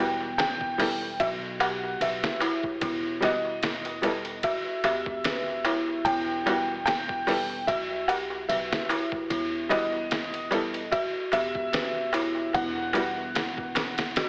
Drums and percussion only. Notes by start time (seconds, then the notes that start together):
0.20 darbuka tek
0.39 snare, ride, darbuka tek
0.61 kick, darbuka tek
0.80 snare, open hi-hat, darbuka tek
1.03 darbuka tek
1.20 kick, ride, darbuka tek
1.60 ride, darbuka tek
1.83 darbuka tek
2.01 ride, darbuka tek
2.23 snare, darbuka tek
2.40 ride, darbuka tek
2.63 kick, darbuka tek
2.81 kick, ride, darbuka tek
3.22 snare, ride, darbuka tek
3.45 darbuka tek
3.63 snare, ride, darbuka tek
3.85 ride, darbuka tek
4.03 ride, darbuka tek
4.25 ride, darbuka tek
4.43 kick, ride, darbuka tek
4.84 ride, darbuka tek
5.06 kick, darbuka tek
5.24 snare, ride, darbuka tek
5.47 darbuka tek
5.65 ride, darbuka tek
5.88 darbuka tek
6.06 kick, ride, darbuka tek
6.47 ride, darbuka tek
6.68 darbuka tek
6.87 snare, ride, darbuka tek
7.09 kick, darbuka tek
7.27 snare, open hi-hat, darbuka tek
7.49 darbuka tek
7.68 kick, ride, darbuka tek
8.08 ride, darbuka tek
8.30 darbuka tek
8.49 ride, darbuka tek
8.71 snare, darbuka tek
8.89 ride, darbuka tek
9.12 kick, darbuka tek
9.30 kick, ride, darbuka tek
9.71 snare, ride, darbuka tek
9.92 darbuka tek
10.11 snare, ride, darbuka tek
10.33 ride, darbuka tek
10.51 ride, darbuka tek
10.74 ride, darbuka tek
10.91 kick, ride, darbuka tek
11.32 ride, darbuka tek
11.55 kick, darbuka tek
11.73 snare, ride, darbuka tek
11.94 darbuka tek
12.13 ride, darbuka tek
12.35 darbuka tek
12.53 kick, ride, darbuka tek
12.75 darbuka tek
12.93 ride, darbuka tek
13.16 darbuka tek
13.35 snare, ride, darbuka tek
13.57 kick, darbuka tek
13.75 snare, ride, darbuka tek
13.98 snare, ride, darbuka tek
14.16 snare, ride, darbuka tek